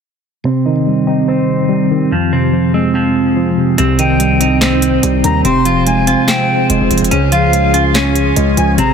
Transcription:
0.44 1.49 C3 medium
0.44 2.10 D#3 medium
0.44 2.10 C4 medium
0.44 1.27 C4 medium
0.44 2.10 G4 medium
0.65 1.70 D#3 medium
0.65 1.06 D#4 medium
0.87 1.68 G3 medium
1.07 2.11 C4 medium
1.07 2.11 D#4 medium
1.28 2.12 C4 medium
1.28 2.11 C5 medium
1.69 2.11 G3 medium
1.91 2.12 D#3 medium
2.11 3.16 F2 medium
2.11 3.76 F3 medium
2.11 2.94 F3 medium
2.11 3.76 C4 medium
2.11 3.76 G#4 medium
2.33 3.37 C3 medium
2.33 2.73 C4 medium
2.53 3.35 F3 medium
2.74 3.78 G#3 loud
2.74 3.77 C4 medium
2.94 3.78 F3 medium
2.94 3.78 C4 medium
3.36 3.78 F3 medium
3.58 3.77 C3 medium
3.78 4.99 C2 loud
3.78 4.83 C3 medium
3.78 4.61 C4 loud
3.78 5.43 D#4 medium
3.78 7.08 C5 medium
3.78 5.43 G5 medium
3.78 closed hi-hat medium
3.99 5.03 D#3 medium
3.99 4.39 D#4 medium
3.99 4.58 G5 medium
3.99 closed hi-hat medium
4.20 5.02 G3 medium
4.20 closed hi-hat medium
4.40 5.45 C4 medium
4.40 5.44 D#4 medium
4.40 closed hi-hat medium
4.61 5.44 C4 medium
4.61 5.45 C5 medium
4.61 snare loud
4.61 clap medium
4.61 closed hi-hat medium
4.82 closed hi-hat medium
5.03 5.23 C2 loud
5.03 5.45 G3 medium
5.03 closed hi-hat medium
5.24 5.44 D#2 loud
5.24 5.45 D#3 medium
5.24 5.44 A#5 medium
5.24 closed hi-hat medium
5.45 6.15 F1 loud
5.45 6.49 C3 medium
5.45 6.27 C4 medium
5.45 8.75 F4 medium
5.45 8.94 G#4 medium
5.45 5.84 C6 medium
5.45 closed hi-hat medium
5.65 6.70 F3 medium
5.65 6.06 F4 medium
5.65 closed hi-hat medium
5.86 6.69 G#3 medium
5.86 6.26 G#5 medium
5.86 closed hi-hat medium
6.07 7.11 C4 medium
6.07 7.12 F4 medium
6.07 closed hi-hat medium
6.28 7.11 C4 medium
6.28 7.11 C5 medium
6.28 6.67 G5 loud
6.28 snare loud
6.28 clap medium
6.28 closed hi-hat medium
6.70 6.80 F1 loud
6.70 7.12 G#3 medium
6.70 closed hi-hat medium
6.81 6.90 F1 loud
6.91 7.01 F1 loud
6.91 7.12 F3 medium
6.91 closed hi-hat medium
6.98 closed hi-hat medium
7.02 7.11 F1 loud
7.02 closed hi-hat medium
7.11 8.32 C#2 loud
7.11 8.16 C#3 medium
7.11 7.94 C#4 medium
7.11 8.77 C#5 medium
7.11 closed hi-hat medium
7.32 8.36 F3 medium
7.32 7.73 F4 medium
7.32 7.91 F5 medium
7.32 closed hi-hat medium
7.53 8.35 G#3 medium
7.53 closed hi-hat medium
7.74 8.78 C#4 loud
7.74 8.78 F4 medium
7.74 closed hi-hat medium
7.95 8.78 C#4 loud
7.95 8.78 C#5 medium
7.95 snare loud
7.95 clap medium
7.95 closed hi-hat medium
8.15 closed hi-hat medium
8.36 8.56 C#2 loud
8.36 8.78 G#3 loud
8.36 closed hi-hat medium
8.57 8.77 C#2 loud
8.57 8.78 F3 medium
8.57 8.77 G#5 medium
8.57 closed hi-hat medium
8.77 8.94 G#1 loud
8.77 8.94 C3 medium
8.77 8.94 C4 medium
8.77 8.94 A#5 loud
8.77 closed hi-hat medium

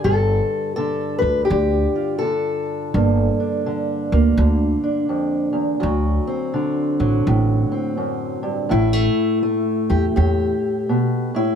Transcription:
0.00 0.76 D3 medium
0.04 0.40 G1 medium
0.04 2.91 G2 medium
0.04 0.75 A4 loud
0.76 1.48 D3 medium
0.76 1.18 A4 loud
1.19 1.43 D2 medium
1.19 1.45 B4 loud
1.45 2.18 G4 medium
1.50 1.85 D2 medium
1.50 2.21 D3 medium
1.96 2.91 F4 soft
2.19 3.65 D3 medium
2.19 4.09 A4 medium
2.94 3.29 G1 medium
2.94 5.09 G2 medium
2.94 4.12 A#3 soft
3.40 4.82 D4 soft
3.66 4.37 D3 medium
4.12 4.33 D2 medium
4.12 5.80 A#3 medium
4.38 4.73 D2 loud
4.38 5.79 D3 medium
4.83 5.79 D4 soft
5.09 5.52 F2 medium
5.53 5.79 E2 medium
5.80 7.97 D2 medium
5.80 6.18 D2 medium
5.80 6.98 F#3 medium
6.27 7.70 C4 medium
6.54 8.71 D3 medium
7.00 7.21 A1 medium
7.00 8.68 F#3 medium
7.27 7.62 A1 medium
7.27 8.68 A2 medium
7.72 8.68 C4 medium
7.97 8.42 F#2 medium
8.43 8.71 G2 medium
8.69 9.06 A1 medium
8.69 10.15 A2 medium
8.69 8.93 F#3 soft
8.69 10.61 E4 loud
8.93 9.41 A3 soft
9.43 11.55 A3 medium
9.90 10.11 E2 medium
9.90 10.04 G4 loud
10.16 10.52 E2 medium
10.16 10.88 A2 medium
10.16 11.55 G4 loud
10.89 11.34 B2 medium
11.35 11.55 A2 medium
11.35 11.55 E4 medium

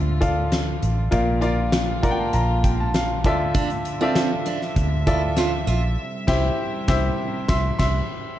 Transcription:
0.00 0.78 D2 medium
0.00 1.14 D3 medium
0.00 5.93 D3 medium
0.00 1.10 F3 medium
0.00 0.21 F4 medium
0.00 1.10 F4 medium
0.00 0.21 A4 medium
0.00 0.21 D5 medium
0.00 1.15 E5 medium
0.21 1.01 F4 medium
0.21 1.01 A4 medium
0.21 1.01 D5 medium
0.21 1.01 F5 medium
0.21 kick medium
0.21 closed hi-hat medium
0.52 snare medium
0.52 closed hi-hat medium
0.83 1.11 A1 medium
0.83 closed hi-hat medium
1.11 2.30 A#1 loud
1.11 1.99 A#2 medium
1.11 3.23 A#3 medium
1.11 1.38 F4 medium
1.11 3.23 F4 medium
1.11 1.39 A#4 medium
1.11 1.39 D5 medium
1.11 1.39 F5 medium
1.11 kick medium
1.11 closed hi-hat medium
1.41 1.95 F4 medium
1.41 1.95 A#4 medium
1.41 1.96 D5 medium
1.41 1.96 F5 medium
1.41 closed hi-hat medium
1.72 snare loud
1.72 closed hi-hat medium
2.03 3.09 F4 medium
2.03 3.09 A#4 medium
2.03 3.09 D5 medium
2.03 2.10 F#5 medium
2.03 2.17 A#5 medium
2.03 kick medium
2.03 closed hi-hat medium
2.11 2.62 G5 medium
2.19 2.33 A5 medium
2.33 3.24 A#1 loud
2.33 2.62 A#5 medium
2.33 closed hi-hat medium
2.64 2.78 G5 medium
2.64 kick medium
2.64 closed hi-hat medium
2.80 2.94 A5 medium
2.94 3.23 F5 medium
2.94 snare medium
2.94 closed hi-hat medium
3.24 4.72 D2 loud
3.24 4.12 D3 medium
3.24 5.95 F3 medium
3.24 3.91 F4 medium
3.24 3.92 A4 medium
3.24 3.92 D5 medium
3.24 8.36 E5 medium
3.24 3.92 E5 medium
3.24 kick medium
3.24 closed hi-hat medium
3.55 3.69 D4 medium
3.55 kick loud
3.55 closed hi-hat medium
3.70 closed hi-hat soft
3.85 closed hi-hat medium
4.01 4.29 C4 medium
4.01 4.94 F4 medium
4.01 4.94 A4 medium
4.01 4.94 D5 medium
4.01 4.94 E5 medium
4.15 snare loud
4.15 closed hi-hat medium
4.46 4.61 D4 medium
4.46 closed hi-hat medium
4.62 snare soft
4.76 5.63 D2 medium
4.76 kick medium
4.76 closed hi-hat medium
5.07 5.21 E4 medium
5.07 5.86 F4 medium
5.07 5.86 A4 medium
5.07 5.87 D5 medium
5.07 5.87 E5 medium
5.07 kick medium
5.07 closed hi-hat medium
5.36 5.51 F4 medium
5.36 snare medium
5.36 closed hi-hat medium
5.67 5.95 A#1 medium
5.67 5.81 F4 medium
5.67 closed hi-hat medium
5.98 8.38 C3 medium
5.98 8.37 G3 medium
6.27 6.48 C2 loud
6.27 6.48 E4 medium
6.27 6.48 G4 loud
6.27 6.49 C5 medium
6.27 6.49 E5 medium
6.27 kick loud
6.27 snare medium
6.27 crash medium
6.88 7.09 C2 medium
6.88 7.09 E4 medium
6.88 7.09 G4 medium
6.88 7.09 C5 medium
6.88 7.10 E5 loud
6.88 kick loud
6.88 snare loud
7.48 7.70 C2 loud
7.48 7.70 E5 loud
7.48 7.69 C6 loud
7.48 kick loud
7.48 snare loud
7.79 8.00 C2 medium
7.79 8.00 E5 loud
7.79 7.99 C6 medium
7.79 kick loud
7.79 snare medium
7.79 crash medium

